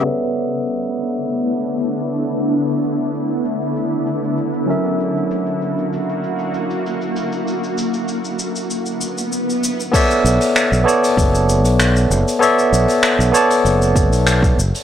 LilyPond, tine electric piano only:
\new Staff \with { instrumentName = "Tine electric piano" } { \time 4/4 \key b \minor \tempo 4 = 97 <b a' cis'' d''>1~ | <b a' cis'' d''>2.~ <b a' cis'' d''>8 <fis cis' ais' e''>8~ | <fis cis' ais' e''>1~ | <fis cis' ais' e''>2.~ <fis cis' ais' e''>8 r8 |
<b a' cis'' d'' e''>4. <b a' cis'' d'' a''>2~ <b a' cis'' d'' a''>8 | <b a' cis'' d'' e''>4. <b a' cis'' d'' a''>2 r8 | }